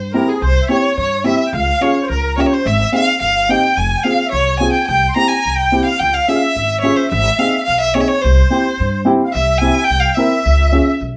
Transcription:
0.00 0.19 G2 medium
0.12 0.28 C4 medium
0.12 0.28 E4 medium
0.12 0.28 G4 medium
0.12 0.27 A#4 medium
0.12 0.31 A#4 medium
0.27 0.41 G#4 medium
0.27 0.42 G#4 medium
0.40 0.58 C2 medium
0.40 0.60 C5 medium
0.45 0.69 C5 medium
0.62 0.69 E5 medium
0.68 0.83 C4 medium
0.68 0.83 E4 soft
0.68 0.84 G4 medium
0.68 0.95 C#5 medium
0.68 0.96 C#5 medium
0.96 1.31 G2 medium
0.96 1.23 C#5 medium
0.96 1.25 C#5 medium
1.24 1.39 C4 medium
1.24 1.39 E4 medium
1.24 1.39 G4 medium
1.24 1.45 E5 medium
1.24 1.52 E5 medium
1.45 1.53 G5 soft
1.53 1.70 C#2 loud
1.53 1.98 F5 medium
1.53 1.84 F5 medium
1.81 1.95 C#4 medium
1.81 1.95 F4 medium
1.81 1.96 G#4 medium
1.81 2.10 C#5 medium
2.02 2.09 C5 soft
2.09 2.43 C#2 medium
2.09 2.48 A#4 medium
2.09 2.36 A#4 medium
2.37 2.51 C#4 medium
2.37 2.52 F4 medium
2.37 2.52 G4 medium
2.37 2.42 C#5 medium
2.37 2.48 E5 medium
2.46 2.55 C#5 medium
2.51 2.65 C5 medium
2.51 2.69 C5 medium
2.65 2.82 G#1 loud
2.65 2.94 E5 medium
2.92 3.07 C4 medium
2.92 3.07 D#4 soft
2.92 3.07 G#4 medium
2.92 3.18 F5 medium
2.92 3.20 F5 medium
3.19 3.54 G1 medium
3.19 3.49 F5 medium
3.19 3.52 F5 medium
3.49 3.63 C4 medium
3.49 3.63 D#4 medium
3.49 3.64 G4 medium
3.49 3.77 G5 medium
3.49 3.78 G5 medium
3.77 3.94 F1 medium
3.77 4.05 G#5 medium
3.77 3.98 G#5 medium
3.97 4.04 G5 medium
4.04 4.18 C4 medium
4.04 4.19 F4 soft
4.04 4.19 G#4 medium
4.04 4.31 F5 medium
4.04 4.26 F5 medium
4.25 4.32 E5 medium
4.31 4.66 C2 medium
4.31 4.61 C#5 medium
4.31 4.58 C#5 medium
4.59 4.74 C4 medium
4.59 4.75 F4 medium
4.59 4.75 G#4 medium
4.59 4.79 G#5 medium
4.59 4.72 G#5 medium
4.73 4.86 G5 medium
4.81 4.88 G#5 medium
4.88 5.05 C2 medium
4.88 5.14 G5 medium
4.88 5.07 G5 medium
5.08 5.16 C6 medium
5.16 5.30 C4 medium
5.16 5.30 E4 soft
5.16 5.31 G4 medium
5.16 5.59 A#5 medium
5.16 5.30 A#5 medium
5.28 5.58 G#5 medium
5.45 5.78 C2 medium
5.56 5.85 G5 medium
5.56 5.87 G5 medium
5.72 5.86 C4 medium
5.72 5.86 E4 medium
5.72 5.87 G4 medium
5.86 6.01 F5 medium
5.86 5.99 F5 medium
6.00 6.17 C#2 medium
6.00 6.16 G5 medium
6.00 6.14 G5 medium
6.13 6.26 F5 medium
6.13 6.30 F5 medium
6.27 6.42 C#4 soft
6.27 6.42 F4 medium
6.27 6.42 G#4 medium
6.27 6.34 E5 medium
6.27 6.81 E5 medium
6.35 6.42 F5 medium
6.41 6.55 E5 medium
6.56 6.89 G#1 medium
6.56 7.10 E5 medium
6.81 6.97 C#4 medium
6.81 6.97 F4 medium
6.81 6.98 G#4 medium
6.81 6.98 C#5 medium
6.96 7.11 C5 medium
7.11 7.28 G#1 loud
7.11 7.63 E5 medium
7.11 7.41 E5 loud
7.38 7.53 C4 medium
7.38 7.53 D#4 medium
7.38 7.53 G#4 medium
7.38 7.65 F5 medium
7.65 8.01 B1 medium
7.65 7.79 F5 loud
7.65 7.81 F5 medium
7.80 7.95 E5 medium
7.80 7.96 E5 medium
7.94 8.09 C4 medium
7.94 8.09 D#4 medium
7.94 8.09 G#4 medium
7.94 8.06 C#5 medium
7.94 8.02 C#5 medium
8.01 8.10 E5 medium
8.07 8.22 C#5 medium
8.07 8.24 C#5 medium
8.21 8.40 C2 loud
8.21 9.01 C5 medium
8.21 9.06 C5 medium
8.50 8.64 C4 medium
8.50 8.65 E4 soft
8.50 8.65 G4 medium
8.80 9.13 G2 medium
9.05 9.19 C4 medium
9.05 9.20 E4 medium
9.05 9.20 G4 medium
9.24 9.33 F5 soft
9.32 9.68 C2 medium
9.32 9.84 E5 medium
9.32 9.60 E5 medium
9.58 9.75 C4 medium
9.58 9.76 E4 medium
9.58 9.86 G#5 medium
9.63 9.76 G4 medium
9.84 10.02 G5 loud
9.84 10.14 G5 medium
9.90 10.06 C2 medium
10.00 10.15 F5 medium
10.14 10.31 C4 medium
10.14 10.31 E4 medium
10.14 10.98 E5 medium
10.14 10.95 E5 medium
10.18 10.31 A#4 medium
10.45 10.78 C#2 medium
10.72 10.86 C#4 medium
10.72 10.86 F4 medium
10.72 10.87 G#4 medium
11.01 11.17 B1 medium

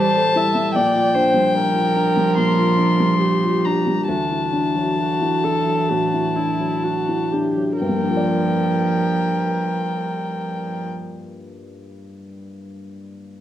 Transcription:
0.00 0.77 E3 medium
0.00 0.55 G3 medium
0.00 0.71 G3 medium
0.00 0.36 E4 medium
0.00 0.17 A4 medium
0.00 0.38 C5 medium
0.00 0.74 A5 loud
0.17 0.48 A4 medium
0.36 0.67 E4 medium
0.36 0.77 E5 medium
0.55 0.75 G3 soft
0.75 2.35 A#2 medium
0.75 4.05 F3 medium
0.75 1.16 D5 medium
0.75 2.35 G5 medium
0.95 1.27 F4 soft
1.14 1.47 D4 medium
1.14 1.56 C5 medium
1.34 2.00 G3 soft
1.55 3.21 A#4 medium
1.75 2.09 F4 soft
1.96 2.30 D4 soft
2.17 2.51 G3 soft
2.37 4.04 A#2 medium
2.37 3.66 C6 medium
2.58 2.92 F4 soft
2.78 3.13 D4 soft
3.00 3.69 G3 soft
3.22 4.10 G4 medium
3.44 3.78 F4 soft
3.65 4.00 D4 soft
3.65 4.07 A#5 medium
3.87 4.09 G3 soft
4.08 5.86 D2 medium
4.08 7.53 E3 medium
4.08 4.89 F#4 soft
4.08 7.28 A5 medium
4.31 4.66 E4 soft
4.53 4.89 D4 soft
4.75 5.48 F#3 soft
4.99 5.46 F#4 medium
5.21 5.58 E4 soft
5.44 5.81 D4 soft
5.44 5.91 A4 medium
5.66 6.04 F#3 soft
5.90 6.28 A2 soft
5.90 6.37 F#4 medium
6.14 6.51 E4 soft
6.36 6.75 D4 soft
6.36 6.85 E4 medium
6.60 7.37 F#3 soft
6.83 7.33 F#4 medium
7.08 7.47 E4 soft
7.32 7.72 D4 soft
7.32 7.79 G4 soft
7.57 7.82 F#3 soft
7.80 10.85 G2 soft
7.80 10.84 F3 medium
7.80 10.83 A#4 medium
7.80 10.86 G5 medium
7.89 10.92 G3 soft
7.95 10.98 A#3 soft
8.03 11.06 D4 soft
8.10 11.13 F4 soft
8.16 11.19 D5 soft

